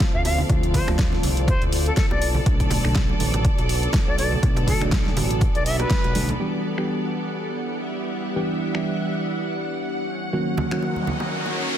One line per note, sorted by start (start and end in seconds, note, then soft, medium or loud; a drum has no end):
0.00 0.47 D3 medium
0.00 0.47 F3 medium
0.00 0.47 A3 medium
0.00 0.47 C4 medium
0.00 2.22 C4 medium
0.00 0.47 F4 medium
0.00 2.18 F4 medium
0.00 7.82 A4 medium
0.00 2.18 C5 medium
0.00 6.36 D5 medium
0.00 10.09 D5 medium
0.00 2.22 F5 medium
0.00 2.18 A5 medium
0.00 kick loud
0.00 snare loud
0.00 closed hi-hat medium
0.14 0.43 D2 loud
0.14 0.23 F5 medium
0.25 0.39 F5 medium
0.25 open hi-hat loud
0.25 high bongo medium
0.38 low conga medium
0.49 0.80 D2 loud
0.49 0.85 D3 medium
0.49 0.85 F3 medium
0.49 0.85 A3 medium
0.49 0.85 C4 medium
0.49 0.85 F4 medium
0.49 kick loud
0.49 closed hi-hat medium
0.49 high bongo medium
0.63 closed hi-hat medium
0.74 0.88 C5 medium
0.74 kick medium
0.74 open hi-hat loud
0.74 low conga medium
0.88 1.17 D2 medium
0.88 2.20 D3 medium
0.88 2.20 F3 medium
0.88 2.20 A3 medium
0.88 2.20 C4 medium
0.88 2.20 F4 medium
0.88 finger snap medium
0.88 high bongo medium
0.99 kick loud
0.99 snare loud
0.99 closed hi-hat medium
1.12 snare soft
1.12 high bongo soft
1.12 high conga medium
1.23 1.54 C2 medium
1.23 open hi-hat loud
1.23 low conga medium
1.37 closed hi-hat medium
1.48 1.62 C5 medium
1.48 kick loud
1.48 closed hi-hat medium
1.48 high bongo medium
1.62 1.91 D2 medium
1.62 closed hi-hat soft
1.73 open hi-hat loud
1.73 high bongo medium
1.86 1.93 A4 medium
1.86 closed hi-hat soft
1.97 2.06 A4 medium
1.97 kick loud
1.97 snare loud
1.97 closed hi-hat medium
2.11 2.40 B1 loud
2.11 2.27 D5 medium
2.11 high bongo medium
2.21 10.08 B3 medium
2.21 6.36 F#4 medium
2.21 6.36 B4 medium
2.21 4.16 A5 medium
2.21 open hi-hat loud
2.34 high bongo soft
2.34 low conga medium
2.46 2.77 B1 loud
2.46 2.81 B2 medium
2.46 2.81 D3 medium
2.46 2.81 F#3 medium
2.46 2.81 A3 medium
2.46 2.81 D4 medium
2.46 kick loud
2.46 closed hi-hat medium
2.60 kick medium
2.60 closed hi-hat medium
2.70 open hi-hat loud
2.70 high bongo medium
2.70 low conga medium
2.84 3.14 B1 medium
2.84 4.40 B2 medium
2.84 4.40 D3 medium
2.84 4.40 F#3 medium
2.84 4.40 A3 medium
2.84 4.41 D4 medium
2.84 finger snap medium
2.95 kick loud
2.95 snare loud
2.95 closed hi-hat medium
2.95 high bongo medium
3.09 high conga medium
3.20 3.50 A1 medium
3.20 open hi-hat loud
3.20 low conga medium
3.34 closed hi-hat medium
3.34 high bongo medium
3.45 kick loud
3.45 closed hi-hat medium
3.58 3.87 B1 medium
3.58 closed hi-hat soft
3.58 high bongo soft
3.69 open hi-hat loud
3.83 closed hi-hat soft
3.93 kick loud
3.93 snare loud
3.93 closed hi-hat medium
3.93 high bongo medium
4.07 4.37 B1 loud
4.07 4.16 D5 medium
4.18 4.33 D5 medium
4.18 6.38 G#5 medium
4.18 open hi-hat loud
4.18 high bongo medium
4.32 low conga medium
4.43 4.73 B1 loud
4.43 4.78 B2 medium
4.43 4.78 D3 medium
4.43 4.78 F#3 medium
4.43 4.78 A3 medium
4.43 4.78 D4 medium
4.43 kick loud
4.43 closed hi-hat medium
4.56 closed hi-hat medium
4.56 high bongo medium
4.67 4.82 A4 medium
4.67 kick medium
4.67 open hi-hat loud
4.67 low conga medium
4.81 5.10 B1 medium
4.81 6.13 B2 medium
4.81 6.13 D3 medium
4.81 6.13 F#3 medium
4.81 6.13 A3 medium
4.81 6.13 D4 medium
4.81 finger snap medium
4.81 closed hi-hat soft
4.81 high bongo medium
4.92 kick loud
4.92 snare loud
4.92 closed hi-hat medium
5.06 snare soft
5.06 high conga medium
5.17 5.47 A1 medium
5.17 open hi-hat loud
5.17 high bongo medium
5.17 low conga medium
5.31 closed hi-hat medium
5.41 kick loud
5.41 closed hi-hat medium
5.41 high bongo medium
5.55 5.84 B1 medium
5.55 5.64 D5 medium
5.55 closed hi-hat soft
5.66 5.77 E5 medium
5.66 open hi-hat loud
5.80 6.29 B4 medium
5.80 closed hi-hat soft
5.80 high bongo medium
5.90 kick loud
5.90 snare loud
5.90 closed hi-hat medium
6.04 6.33 B1 medium
6.04 closed hi-hat soft
6.04 high bongo medium
6.15 6.32 B2 medium
6.15 6.32 D3 medium
6.15 6.32 F#3 medium
6.15 6.32 A3 medium
6.15 6.32 D4 loud
6.15 open hi-hat loud
6.15 high conga medium
6.29 closed hi-hat soft
6.29 low conga medium
6.39 6.75 E3 medium
6.39 6.75 G3 medium
6.39 6.75 B3 medium
6.39 6.75 D4 medium
6.39 10.05 E4 medium
6.39 10.05 G4 medium
6.39 6.75 G4 medium
6.39 10.05 B4 medium
6.39 10.05 D5 medium
6.39 11.78 F#5 medium
6.78 8.34 E3 medium
6.78 8.34 G3 medium
6.78 8.34 B3 medium
6.78 8.34 D4 medium
6.78 8.34 G4 medium
6.78 10.08 G4 medium
6.78 finger snap medium
7.81 10.08 E5 medium
8.36 8.71 E3 medium
8.36 8.71 G3 medium
8.36 8.71 B3 medium
8.36 8.71 D4 medium
8.36 8.71 G4 medium
8.74 10.07 E3 medium
8.74 10.07 G3 medium
8.74 10.07 B3 medium
8.74 10.07 D4 medium
8.74 10.07 G4 medium
8.74 finger snap medium
10.08 11.78 C#4 medium
10.08 11.78 D#4 medium
10.08 11.78 A#4 medium
10.08 11.78 C#5 medium
10.08 11.78 F#5 medium
10.33 10.68 D#3 medium
10.33 10.68 F#3 medium
10.33 10.68 A#3 medium
10.33 10.68 C#4 medium
10.33 10.68 F#4 medium
10.33 riser medium
10.45 11.78 F#4 medium
10.57 high bongo medium
10.57 low conga medium
10.64 11.78 A#4 medium
10.71 11.78 D#3 medium
10.71 11.78 F#3 medium
10.71 11.78 A#3 medium
10.71 11.78 C#4 medium
10.71 11.78 F#4 medium
10.71 finger snap medium
10.83 high bongo soft
10.96 11.78 D#5 medium
10.96 high conga medium
11.07 low conga medium
11.20 high bongo medium
11.46 high bongo soft